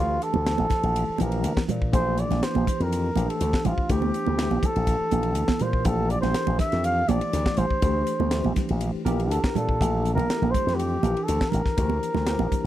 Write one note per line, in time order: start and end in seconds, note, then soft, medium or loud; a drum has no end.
0.00 0.17 D2 medium
0.00 0.43 E3 medium
0.00 0.43 A3 medium
0.00 0.43 D4 medium
0.00 0.24 F4 medium
0.00 0.43 G4 medium
0.00 0.43 D5 medium
0.22 1.20 A4 medium
0.22 hi-hat pedal medium
0.22 ride medium
0.34 0.54 D2 medium
0.34 high conga medium
0.34 low conga medium
0.45 1.15 E3 medium
0.45 1.15 A3 medium
0.45 1.15 D4 medium
0.45 1.15 G4 medium
0.45 1.16 C5 medium
0.45 snare loud
0.45 hi-hat pedal medium
0.45 ride medium
0.58 0.68 A#1 medium
0.58 high conga medium
0.70 kick medium
0.70 snare soft
0.70 hi-hat pedal medium
0.70 ride medium
0.70 low conga medium
0.83 1.03 A#1 medium
0.83 ride medium
0.96 hi-hat pedal medium
0.96 ride medium
1.10 muted slap bass stroke soft
1.18 1.46 A#1 medium
1.18 1.89 E3 medium
1.18 1.89 A#3 medium
1.18 1.89 D4 medium
1.18 1.89 G4 medium
1.18 1.65 A#4 medium
1.18 1.89 C5 medium
1.18 hi-hat pedal medium
1.18 ride medium
1.18 high conga medium
1.32 ride medium
1.44 1.55 D2 medium
1.44 hi-hat pedal medium
1.44 ride medium
1.57 muted slap bass stroke soft
1.57 kick medium
1.57 snare loud
1.69 1.94 A#2 medium
1.69 hi-hat pedal medium
1.69 ride medium
1.69 low conga medium
1.82 kick medium
1.92 2.23 A#1 loud
1.92 2.39 E3 medium
1.92 2.39 A3 medium
1.92 2.39 D4 medium
1.92 2.39 G4 medium
1.92 2.39 A4 medium
1.92 2.21 C5 medium
1.92 kick loud
1.92 hi-hat pedal medium
1.92 ride medium
2.17 2.45 D5 medium
2.17 hi-hat pedal medium
2.17 ride medium
2.31 2.40 A#1 medium
2.31 snare soft
2.31 ride medium
2.31 high conga medium
2.31 low conga medium
2.41 3.11 E3 medium
2.41 3.12 A#3 soft
2.41 3.11 D4 medium
2.41 3.12 G4 medium
2.41 3.12 C5 medium
2.41 2.84 C5 medium
2.41 snare loud
2.41 hi-hat pedal medium
2.41 ride medium
2.55 2.65 A#1 medium
2.55 high conga medium
2.67 kick medium
2.67 hi-hat pedal medium
2.67 ride medium
2.67 low conga medium
2.80 3.09 F2 medium
2.80 3.31 A#4 medium
2.80 ride medium
2.92 hi-hat pedal medium
2.92 ride medium
3.16 3.26 A#1 medium
3.16 3.86 E3 medium
3.16 3.86 A3 medium
3.16 3.86 D4 medium
3.16 3.86 G4 medium
3.16 3.86 C5 medium
3.16 hi-hat pedal medium
3.16 ride medium
3.16 high conga medium
3.29 3.68 A4 medium
3.29 ride medium
3.40 3.51 D2 medium
3.40 hi-hat pedal medium
3.40 ride medium
3.53 kick medium
3.53 snare loud
3.65 3.76 A1 medium
3.65 3.92 F4 medium
3.65 hi-hat pedal medium
3.65 ride medium
3.65 low conga medium
3.78 kick medium
3.89 4.09 D2 medium
3.89 4.36 E3 medium
3.89 4.36 A3 medium
3.89 4.37 D4 medium
3.89 4.37 G4 medium
3.89 4.67 G4 medium
3.89 4.36 C5 medium
3.89 kick loud
3.89 hi-hat pedal medium
3.89 ride medium
4.02 high conga medium
4.14 hi-hat pedal medium
4.14 ride medium
4.26 4.47 D2 medium
4.26 high conga medium
4.37 5.08 E3 medium
4.37 5.08 A3 soft
4.37 5.08 D4 medium
4.37 5.08 G4 medium
4.37 5.08 C5 medium
4.37 snare loud
4.37 hi-hat pedal medium
4.37 ride medium
4.50 4.60 A#1 medium
4.50 high conga medium
4.63 5.63 A4 medium
4.63 kick medium
4.63 hi-hat pedal medium
4.63 ride medium
4.63 low conga medium
4.76 4.96 A#1 medium
4.76 ride medium
4.87 kick medium
4.87 hi-hat pedal medium
4.87 ride medium
5.00 muted slap bass stroke soft
5.11 5.36 A#1 medium
5.11 5.82 E3 medium
5.11 5.82 A#3 medium
5.11 5.82 D4 medium
5.11 5.82 G4 medium
5.11 5.82 A4 medium
5.11 hi-hat pedal medium
5.11 ride medium
5.11 high conga medium
5.23 ride medium
5.35 5.47 D2 medium
5.35 hi-hat pedal medium
5.35 ride medium
5.48 kick medium
5.48 snare loud
5.48 high conga medium
5.59 5.86 A#2 medium
5.59 5.88 C5 medium
5.59 hi-hat pedal medium
5.59 ride medium
5.59 low conga medium
5.73 kick medium
5.84 6.15 A#1 loud
5.84 6.32 E3 medium
5.84 6.32 A3 medium
5.84 6.32 D4 medium
5.84 6.32 G4 medium
5.84 6.12 A4 medium
5.84 6.32 C5 medium
5.84 kick loud
5.84 hi-hat pedal medium
5.84 ride medium
6.10 6.20 D5 medium
6.10 hi-hat pedal medium
6.10 ride medium
6.21 6.33 A#1 medium
6.21 6.56 C5 medium
6.21 snare soft
6.21 ride medium
6.21 high conga medium
6.21 low conga medium
6.34 7.04 E3 medium
6.34 7.04 D4 medium
6.34 7.04 G4 medium
6.34 7.04 A4 medium
6.34 7.04 A#4 medium
6.34 snare loud
6.34 hi-hat pedal medium
6.34 ride medium
6.47 6.57 A#1 medium
6.47 high conga medium
6.59 6.86 E5 medium
6.59 kick medium
6.59 snare soft
6.59 hi-hat pedal medium
6.59 ride medium
6.59 low conga medium
6.72 7.02 F2 medium
6.72 snare soft
6.72 ride medium
6.84 7.10 F5 loud
6.84 hi-hat pedal medium
6.84 ride medium
7.08 7.19 A#1 medium
7.08 7.78 E3 medium
7.08 7.78 A3 medium
7.08 7.78 D4 medium
7.08 7.78 G4 medium
7.08 7.78 C5 medium
7.08 7.59 D5 loud
7.08 hi-hat pedal medium
7.08 ride medium
7.08 high conga medium
7.21 ride medium
7.33 7.44 D2 medium
7.33 snare soft
7.33 hi-hat pedal medium
7.33 ride medium
7.46 kick medium
7.46 snare loud
7.57 7.68 A1 medium
7.57 8.57 C5 medium
7.57 hi-hat pedal medium
7.57 ride medium
7.57 low conga medium
7.70 muted slap bass stroke soft
7.70 kick medium
7.82 8.02 D2 medium
7.82 8.29 E3 medium
7.82 8.29 A3 medium
7.82 8.29 D4 medium
7.82 8.29 G4 medium
7.82 8.30 A4 medium
7.82 kick loud
7.82 hi-hat pedal medium
7.82 ride medium
8.07 hi-hat pedal medium
8.07 ride medium
8.20 8.40 D2 medium
8.20 high conga medium
8.20 low conga medium
8.31 9.02 E3 medium
8.31 9.02 A3 medium
8.31 9.02 D4 medium
8.31 9.02 G4 medium
8.31 9.02 C5 medium
8.31 snare loud
8.31 hi-hat pedal medium
8.31 ride medium
8.45 8.55 A#1 medium
8.45 high conga medium
8.56 kick medium
8.56 snare soft
8.56 hi-hat pedal medium
8.56 ride medium
8.56 low conga medium
8.69 8.90 A#1 medium
8.69 ride medium
8.81 hi-hat pedal medium
8.81 ride medium
9.05 9.30 A#1 medium
9.05 9.75 E3 medium
9.05 9.75 D4 medium
9.05 9.76 G4 medium
9.05 9.75 A4 medium
9.05 9.75 A#4 medium
9.05 hi-hat pedal medium
9.05 ride medium
9.05 high conga medium
9.20 ride medium
9.30 9.41 D2 medium
9.30 9.44 A4 medium
9.30 hi-hat pedal medium
9.30 ride medium
9.43 9.58 A#4 medium
9.43 kick medium
9.43 snare loud
9.55 9.82 A#2 medium
9.55 10.14 A4 medium
9.55 hi-hat pedal medium
9.55 ride medium
9.55 low conga medium
9.69 kick medium
9.80 10.11 A#1 loud
9.80 10.27 E3 medium
9.80 10.27 A3 medium
9.80 10.27 D4 medium
9.80 10.26 G4 medium
9.80 10.27 A4 medium
9.80 kick loud
9.80 hi-hat pedal medium
9.80 ride medium
10.05 hi-hat pedal medium
10.05 ride medium
10.15 10.26 A#1 medium
10.15 10.52 A#4 medium
10.15 high conga medium
10.15 low conga medium
10.19 ride medium
10.30 11.00 E3 medium
10.30 10.99 A3 medium
10.30 10.99 D4 medium
10.30 11.00 G4 medium
10.30 11.00 A4 medium
10.30 snare loud
10.30 hi-hat pedal medium
10.30 ride medium
10.42 10.51 A#1 medium
10.42 high conga medium
10.51 10.77 C5 medium
10.51 kick medium
10.51 hi-hat pedal medium
10.51 ride medium
10.51 low conga medium
10.67 10.96 F2 medium
10.67 snare soft
10.67 ride medium
10.75 11.25 G4 medium
10.79 hi-hat pedal medium
10.79 ride medium
11.03 11.13 A#1 medium
11.03 11.73 E3 medium
11.03 11.73 D4 medium
11.03 11.73 G4 medium
11.03 11.73 A4 medium
11.03 11.73 A#4 medium
11.03 hi-hat pedal medium
11.03 ride medium
11.03 high conga medium
11.17 ride medium
11.24 11.51 A4 medium
11.28 11.39 D2 medium
11.28 hi-hat pedal medium
11.28 ride medium
11.41 kick medium
11.41 snare loud
11.49 12.66 A#4 medium
11.49 hi-hat pedal medium
11.49 ride medium
11.49 low conga medium
11.54 11.63 A1 medium
11.65 kick medium
11.65 snare soft
11.77 11.98 D2 medium
11.77 12.24 E3 medium
11.77 12.23 A#3 medium
11.77 12.24 D4 medium
11.77 12.24 G4 medium
11.77 12.23 C5 medium
11.77 kick loud
11.77 hi-hat pedal medium
11.77 ride medium
11.90 high conga medium
12.03 hi-hat pedal medium
12.03 ride medium
12.14 12.34 D2 medium
12.14 snare soft
12.14 high conga medium
12.14 low conga medium
12.27 12.66 E3 medium
12.27 12.66 A#3 medium
12.27 12.66 D4 medium
12.27 12.66 G4 medium
12.27 12.66 C5 medium
12.27 snare loud
12.27 hi-hat pedal medium
12.27 ride medium
12.39 12.49 A#1 medium
12.39 high conga medium
12.52 kick medium
12.52 hi-hat pedal medium
12.52 ride medium
12.52 low conga medium